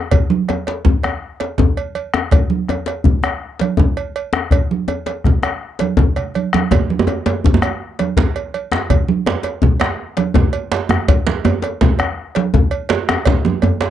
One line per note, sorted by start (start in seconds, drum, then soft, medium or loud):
0.11 bombo rim soft
0.11 bombo low medium
0.11 cowbell medium
0.11 djembe slap soft
0.11 djembe bass medium
0.11 low conga medium
0.30 djembe slap soft
0.30 high conga medium
0.48 bombo rim soft
0.48 cowbell soft
0.48 djembe slap soft
0.48 djembe tone medium
0.67 cowbell soft
0.67 djembe slap medium
0.85 bombo low medium
0.85 low conga medium
0.85 djembe bass medium
1.03 bombo rim medium
1.03 cowbell soft
1.03 djembe slap soft
1.03 djembe tone medium
1.40 cowbell soft
1.40 djembe slap medium
1.58 bombo low medium
1.58 djembe tone medium
1.58 low conga medium
1.58 djembe bass medium
1.77 cowbell soft
1.95 cowbell soft
1.95 high conga soft
2.14 bombo rim medium
2.14 djembe slap medium
2.14 djembe tone medium
2.31 bombo rim soft
2.31 bombo low loud
2.31 cowbell medium
2.31 djembe slap soft
2.31 low conga medium
2.31 djembe bass medium
2.50 djembe slap soft
2.50 high conga medium
2.68 bombo rim soft
2.68 cowbell soft
2.68 djembe slap soft
2.68 djembe tone medium
2.86 cowbell soft
2.86 djembe slap medium
3.04 bombo low medium
3.04 djembe bass medium
3.04 low conga medium
3.23 bombo rim medium
3.23 cowbell soft
3.23 djembe slap soft
3.23 djembe tone medium
3.60 cowbell soft
3.60 djembe slap medium
3.60 high conga soft
3.77 bombo low medium
3.77 djembe tone medium
3.77 djembe bass medium
3.77 low conga medium
3.97 cowbell soft
4.16 cowbell soft
4.33 bombo rim medium
4.33 djembe slap medium
4.33 djembe tone medium
4.51 bombo low medium
4.51 cowbell medium
4.51 djembe slap soft
4.51 djembe bass medium
4.51 low conga medium
4.71 high conga medium
4.88 cowbell soft
4.88 djembe slap soft
4.88 djembe tone medium
5.06 cowbell soft
5.06 djembe slap medium
5.06 high conga soft
5.24 bombo rim soft
5.24 bombo low medium
5.24 djembe slap soft
5.24 djembe bass medium
5.24 low conga medium
5.43 bombo rim medium
5.43 cowbell soft
5.43 djembe tone medium
5.79 cowbell soft
5.79 djembe slap medium
5.79 high conga soft
5.97 bombo low medium
5.97 djembe tone medium
5.97 djembe bass medium
5.97 low conga medium
6.16 bombo rim soft
6.16 cowbell soft
6.16 low conga soft
6.34 cowbell soft
6.34 djembe slap soft
6.34 high conga soft
6.53 bombo rim medium
6.53 djembe slap medium
6.53 djembe tone medium
6.53 high conga medium
6.71 bombo rim soft
6.71 bombo low medium
6.71 cowbell medium
6.71 djembe slap soft
6.71 djembe tone loud
6.71 djembe bass medium
6.71 low conga medium
6.90 djembe slap soft
6.90 high conga medium
6.99 djembe tone loud
7.07 bombo rim soft
7.07 cowbell soft
7.07 djembe slap soft
7.07 djembe tone medium
7.26 cowbell soft
7.26 djembe slap medium
7.26 djembe tone medium
7.44 bombo low medium
7.44 djembe bass medium
7.44 low conga medium
7.54 djembe tone loud
7.62 bombo rim medium
7.62 cowbell soft
7.62 djembe slap soft
7.62 djembe tone medium
7.99 cowbell soft
7.99 djembe slap medium
7.99 high conga soft
8.17 bombo low medium
8.17 djembe slap medium
8.17 djembe tone medium
8.17 djembe bass medium
8.17 low conga medium
8.36 cowbell soft
8.54 cowbell soft
8.54 high conga soft
8.72 bombo rim medium
8.72 djembe slap medium
8.72 djembe tone soft
8.90 bombo rim soft
8.90 bombo low medium
8.90 cowbell medium
8.90 djembe slap soft
8.90 djembe bass medium
8.90 low conga medium
9.08 djembe slap soft
9.08 high conga medium
9.26 bombo rim soft
9.26 cowbell soft
9.26 djembe slap soft
9.26 djembe slap medium
9.26 djembe tone medium
9.43 cowbell soft
9.43 djembe slap soft
9.62 bombo low medium
9.62 djembe bass medium
9.62 low conga medium
9.80 bombo rim medium
9.80 cowbell soft
9.80 djembe slap medium
9.80 djembe tone soft
10.17 cowbell soft
10.17 djembe slap medium
10.17 high conga medium
10.34 bombo low medium
10.34 djembe tone medium
10.34 djembe tone loud
10.34 djembe bass medium
10.34 low conga medium
10.53 cowbell medium
10.72 cowbell medium
10.72 djembe slap medium
10.72 high conga soft
10.89 bombo rim medium
10.89 djembe slap medium
10.89 djembe tone loud
10.89 djembe tone medium
11.08 bombo rim soft
11.08 bombo low medium
11.08 cowbell medium
11.08 djembe slap soft
11.08 low conga medium
11.08 djembe bass medium
11.27 djembe slap medium
11.27 high conga medium
11.45 bombo rim soft
11.45 cowbell soft
11.45 djembe slap soft
11.45 djembe tone medium
11.45 djembe tone loud
11.62 cowbell soft
11.62 djembe slap medium
11.81 bombo low loud
11.81 djembe slap medium
11.81 djembe bass medium
11.81 low conga medium
11.99 bombo rim medium
11.99 cowbell soft
11.99 djembe slap soft
11.99 djembe tone medium
12.35 cowbell soft
12.35 djembe slap medium
12.35 high conga medium
12.54 bombo low medium
12.54 djembe tone medium
12.54 djembe bass medium
12.54 low conga medium
12.71 cowbell soft
12.89 cowbell medium
12.89 djembe slap loud
12.89 high conga soft
13.09 bombo rim medium
13.09 djembe slap medium
13.09 djembe tone medium
13.25 bombo low loud
13.25 cowbell medium
13.25 djembe slap medium
13.25 high conga soft
13.25 low conga medium
13.25 djembe bass medium
13.45 djembe slap soft
13.45 djembe tone medium
13.45 high conga medium
13.62 cowbell medium
13.62 djembe tone medium
13.62 djembe bass medium
13.81 cowbell medium
13.81 djembe slap medium